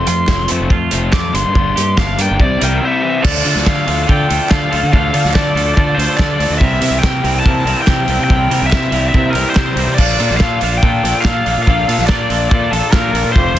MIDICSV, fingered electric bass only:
0, 0, Header, 1, 2, 480
1, 0, Start_track
1, 0, Key_signature, -1, "minor"
1, 0, Tempo, 421644
1, 1766, Time_signature, 4, 2, 24, 8
1, 15471, End_track
2, 0, Start_track
2, 0, Title_t, "Fingered electric bass"
2, 0, Program_c, 0, 33
2, 79, Note_on_c, 0, 41, 105
2, 273, Note_off_c, 0, 41, 0
2, 322, Note_on_c, 0, 29, 88
2, 515, Note_off_c, 0, 29, 0
2, 577, Note_on_c, 0, 41, 87
2, 668, Note_off_c, 0, 41, 0
2, 693, Note_on_c, 0, 29, 105
2, 786, Note_off_c, 0, 29, 0
2, 801, Note_on_c, 0, 41, 103
2, 995, Note_off_c, 0, 41, 0
2, 1054, Note_on_c, 0, 29, 90
2, 1243, Note_off_c, 0, 29, 0
2, 1522, Note_on_c, 0, 31, 89
2, 1620, Note_off_c, 0, 31, 0
2, 1647, Note_on_c, 0, 43, 80
2, 1743, Note_off_c, 0, 43, 0
2, 1769, Note_on_c, 0, 31, 97
2, 1961, Note_off_c, 0, 31, 0
2, 2021, Note_on_c, 0, 43, 107
2, 2208, Note_off_c, 0, 43, 0
2, 2253, Note_on_c, 0, 31, 83
2, 2443, Note_off_c, 0, 31, 0
2, 2487, Note_on_c, 0, 43, 95
2, 2584, Note_off_c, 0, 43, 0
2, 2627, Note_on_c, 0, 31, 104
2, 2716, Note_off_c, 0, 31, 0
2, 2729, Note_on_c, 0, 36, 98
2, 2921, Note_off_c, 0, 36, 0
2, 2979, Note_on_c, 0, 36, 98
2, 3167, Note_off_c, 0, 36, 0
2, 3693, Note_on_c, 0, 38, 93
2, 3884, Note_off_c, 0, 38, 0
2, 3923, Note_on_c, 0, 50, 86
2, 4022, Note_off_c, 0, 50, 0
2, 4044, Note_on_c, 0, 38, 88
2, 4142, Note_off_c, 0, 38, 0
2, 4175, Note_on_c, 0, 50, 87
2, 4365, Note_off_c, 0, 50, 0
2, 4411, Note_on_c, 0, 38, 92
2, 4603, Note_off_c, 0, 38, 0
2, 4659, Note_on_c, 0, 50, 93
2, 4848, Note_off_c, 0, 50, 0
2, 4899, Note_on_c, 0, 38, 97
2, 4992, Note_off_c, 0, 38, 0
2, 5141, Note_on_c, 0, 50, 97
2, 5329, Note_off_c, 0, 50, 0
2, 5384, Note_on_c, 0, 38, 90
2, 5474, Note_off_c, 0, 38, 0
2, 5496, Note_on_c, 0, 50, 81
2, 5590, Note_off_c, 0, 50, 0
2, 5610, Note_on_c, 0, 38, 88
2, 5803, Note_off_c, 0, 38, 0
2, 5854, Note_on_c, 0, 50, 97
2, 5949, Note_off_c, 0, 50, 0
2, 5972, Note_on_c, 0, 38, 100
2, 6067, Note_off_c, 0, 38, 0
2, 6087, Note_on_c, 0, 50, 95
2, 6281, Note_off_c, 0, 50, 0
2, 6313, Note_on_c, 0, 38, 98
2, 6512, Note_off_c, 0, 38, 0
2, 6567, Note_on_c, 0, 50, 100
2, 6761, Note_off_c, 0, 50, 0
2, 6803, Note_on_c, 0, 38, 101
2, 6902, Note_off_c, 0, 38, 0
2, 7047, Note_on_c, 0, 50, 103
2, 7241, Note_off_c, 0, 50, 0
2, 7279, Note_on_c, 0, 38, 84
2, 7380, Note_off_c, 0, 38, 0
2, 7398, Note_on_c, 0, 38, 83
2, 7499, Note_off_c, 0, 38, 0
2, 7518, Note_on_c, 0, 36, 103
2, 7715, Note_off_c, 0, 36, 0
2, 7750, Note_on_c, 0, 48, 96
2, 7852, Note_off_c, 0, 48, 0
2, 7859, Note_on_c, 0, 36, 95
2, 7967, Note_off_c, 0, 36, 0
2, 8007, Note_on_c, 0, 48, 90
2, 8200, Note_off_c, 0, 48, 0
2, 8241, Note_on_c, 0, 36, 100
2, 8437, Note_off_c, 0, 36, 0
2, 8486, Note_on_c, 0, 48, 106
2, 8679, Note_off_c, 0, 48, 0
2, 8704, Note_on_c, 0, 36, 92
2, 8811, Note_off_c, 0, 36, 0
2, 8971, Note_on_c, 0, 48, 104
2, 9162, Note_off_c, 0, 48, 0
2, 9192, Note_on_c, 0, 36, 101
2, 9295, Note_off_c, 0, 36, 0
2, 9318, Note_on_c, 0, 48, 87
2, 9419, Note_off_c, 0, 48, 0
2, 9456, Note_on_c, 0, 36, 97
2, 9645, Note_off_c, 0, 36, 0
2, 9680, Note_on_c, 0, 48, 94
2, 9780, Note_off_c, 0, 48, 0
2, 9806, Note_on_c, 0, 36, 97
2, 9903, Note_off_c, 0, 36, 0
2, 9925, Note_on_c, 0, 48, 86
2, 10119, Note_off_c, 0, 48, 0
2, 10150, Note_on_c, 0, 36, 89
2, 10349, Note_off_c, 0, 36, 0
2, 10410, Note_on_c, 0, 48, 99
2, 10601, Note_off_c, 0, 48, 0
2, 10629, Note_on_c, 0, 36, 92
2, 10733, Note_off_c, 0, 36, 0
2, 10891, Note_on_c, 0, 48, 98
2, 11082, Note_off_c, 0, 48, 0
2, 11107, Note_on_c, 0, 36, 94
2, 11211, Note_off_c, 0, 36, 0
2, 11233, Note_on_c, 0, 48, 82
2, 11334, Note_off_c, 0, 48, 0
2, 11376, Note_on_c, 0, 34, 92
2, 11565, Note_off_c, 0, 34, 0
2, 11607, Note_on_c, 0, 46, 93
2, 11703, Note_off_c, 0, 46, 0
2, 11727, Note_on_c, 0, 34, 97
2, 11823, Note_off_c, 0, 34, 0
2, 11848, Note_on_c, 0, 46, 87
2, 12039, Note_off_c, 0, 46, 0
2, 12088, Note_on_c, 0, 34, 90
2, 12279, Note_off_c, 0, 34, 0
2, 12334, Note_on_c, 0, 46, 105
2, 12523, Note_off_c, 0, 46, 0
2, 12562, Note_on_c, 0, 34, 85
2, 12659, Note_off_c, 0, 34, 0
2, 12802, Note_on_c, 0, 46, 111
2, 12995, Note_off_c, 0, 46, 0
2, 13049, Note_on_c, 0, 34, 96
2, 13143, Note_off_c, 0, 34, 0
2, 13175, Note_on_c, 0, 46, 83
2, 13267, Note_off_c, 0, 46, 0
2, 13292, Note_on_c, 0, 34, 106
2, 13480, Note_off_c, 0, 34, 0
2, 13526, Note_on_c, 0, 46, 94
2, 13621, Note_off_c, 0, 46, 0
2, 13642, Note_on_c, 0, 34, 97
2, 13739, Note_off_c, 0, 34, 0
2, 13764, Note_on_c, 0, 46, 87
2, 13955, Note_off_c, 0, 46, 0
2, 14001, Note_on_c, 0, 34, 92
2, 14194, Note_off_c, 0, 34, 0
2, 14246, Note_on_c, 0, 46, 101
2, 14437, Note_off_c, 0, 46, 0
2, 14479, Note_on_c, 0, 34, 96
2, 14576, Note_off_c, 0, 34, 0
2, 14726, Note_on_c, 0, 46, 112
2, 14916, Note_off_c, 0, 46, 0
2, 14947, Note_on_c, 0, 34, 95
2, 15049, Note_off_c, 0, 34, 0
2, 15072, Note_on_c, 0, 46, 90
2, 15171, Note_off_c, 0, 46, 0
2, 15208, Note_on_c, 0, 29, 91
2, 15397, Note_off_c, 0, 29, 0
2, 15419, Note_on_c, 0, 41, 96
2, 15471, Note_off_c, 0, 41, 0
2, 15471, End_track
0, 0, End_of_file